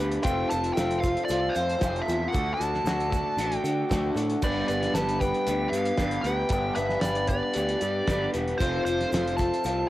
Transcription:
Already playing: G2 D3 G4 B4 D5 B5
0.00 D2 G3 B3 D4
0.12 closed hi-hat
0.23 F1 F2 C3 F3 A3 C4 F4 A4 F5 G5 C6, kick, closed hi-hat, shaker
0.50 F1 C4 F4 A4 A5, closed hi-hat, shaker
0.64 closed hi-hat
0.73 F3 G5, closed hi-hat, shaker
0.77 F1 A3 C4 F4 A4, snare
0.91 closed hi-hat
0.99 A4 F5, shaker
1.04 C4 F4, kick, closed hi-hat
1.17 closed hi-hat
1.25 D5
1.29 C2 F3 A3 C4 F4, closed hi-hat, shaker
1.49 C5
1.55 F2 F3 A3 C4 F4, closed hi-hat, shaker
1.70 closed hi-hat
1.78 A3 C4 F4 A4, snare, closed hi-hat
1.82 F1 F2 C3 F3 A3 C4 F4, kick, shaker
1.96 closed hi-hat
2.02 A4 E5
2.08 E2 F3 A3 C4 F4, closed hi-hat, shaker
2.28 F#5
2.32 D2 D3 A3 D4 F#4 A4 F#5 D6, kick, closed hi-hat, shaker
2.54 A4 A5
2.59 D2 D4 F#4, closed hi-hat, shaker
2.74 snare
2.84 D2 D3 A3 D4 F#4, snare, closed hi-hat, shaker
2.88 A4
3.00 closed hi-hat
3.10 F#4 A4, kick, closed hi-hat, shaker
3.14 D4
3.37 A1 D3 A3 D4 F#4, closed hi-hat, shaker
3.52 closed hi-hat
3.58 G5
3.64 D3 A3 D4 F#4, closed hi-hat, shaker
3.91 D2 D3 A3 D4 F#4 A4, kick, snare, closed hi-hat, shaker
4.14 A2 D4 F#4 A4, closed hi-hat, shaker
4.18 A3
4.30 closed hi-hat
4.41 G1 G2 D3 G3 B3 D4 G4 B4 D5 G5, kick, crash, shaker
4.68 G1 G3 B3 D4 B4 D5, closed hi-hat, shaker
4.83 snare, closed hi-hat
4.94 G1 G3 B3 D4 G4 B4 A5, snare, closed hi-hat, shaker
5.09 closed hi-hat
5.20 B3 D4 B4 G5, kick, closed hi-hat, shaker
5.24 G3
5.34 closed hi-hat
5.47 D2 G3 B3 D4 G4, closed hi-hat, shaker
5.69 G2 G4 F5, closed hi-hat
5.74 G3 B3 D4, shaker
5.86 closed hi-hat
5.97 G1 G2 D3 G3 B3 D4 G4, kick, snare, closed hi-hat, shaker
6.01 B4
6.11 closed hi-hat
6.21 D2 D4 G4 G5, closed hi-hat
6.26 G3 B3 B4, shaker
6.49 G1 G2 D3 G3 B3 D4 B4, kick, closed hi-hat, shaker
6.53 G4
6.75 G1 G3 B3 D4 B4 E5, closed hi-hat, shaker
6.89 snare
7.01 G1 G3 B3 D4 G4 B4 D5, snare, closed hi-hat, shaker
7.15 closed hi-hat
7.28 G3 B3 D4 B4 D5, kick, closed hi-hat, shaker
7.54 D2 G3 B3 D4 G4, closed hi-hat, shaker
7.69 closed hi-hat
7.81 G2 G3 B3 D4 G4, closed hi-hat, shaker
8.06 G1 G2 D3 G3 B3 D4 G4, kick, snare, closed hi-hat, shaker
8.11 B4
8.32 E1 G3 B3 D4 G4 B4, closed hi-hat, shaker
8.48 closed hi-hat
8.58 F1 F2 C3 F3 A3 C4 F4 A4 C5 F5 C6, kick, closed hi-hat, shaker
8.62 A4
8.85 F1 F4 A4 C5, closed hi-hat, shaker
8.90 C4
9.01 snare, closed hi-hat
9.11 F1 F3 A3 C4 F4 A4, snare, closed hi-hat, shaker
9.27 closed hi-hat
9.37 C4 F4 A4 A5, kick, closed hi-hat, shaker
9.54 closed hi-hat
9.64 C2 F3 A3 C4 F4, closed hi-hat, shaker

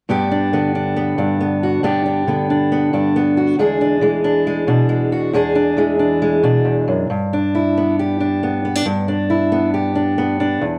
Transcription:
0.09 G2 B3 D4 G4
0.31 D4
0.53 D3 B3
0.75 D4
0.96 B3
1.18 G2 D4
1.41 B3
1.63 F#4
1.83 G2 B3 D4 G4
2.06 D4
2.27 D3 B3
2.50 D4
2.72 B3
2.93 G2 D4
3.16 B3
3.37 F#4
3.59 E2 G#3 D4 G#4
3.81 D4
4.01 E3 G#3
4.24 D4
4.47 G#3
4.67 B2 D4
4.89 G#3
5.12 F#4
5.33 E2 G#3 D4 G#4
5.55 D4
5.77 E3 G#3
5.99 D4
6.22 G#3
6.43 B2 D4
6.65 E2
6.88 F#2
7.10 G2
7.33 D4
7.55 E4
7.77 B3
7.99 G4
8.20 D4
8.43 B3
8.65 B3
8.75 D4
8.85 G2
9.08 D4
9.30 E4
9.52 B3
9.74 G4
9.95 D4
10.18 B3
10.40 D4
10.61 E2

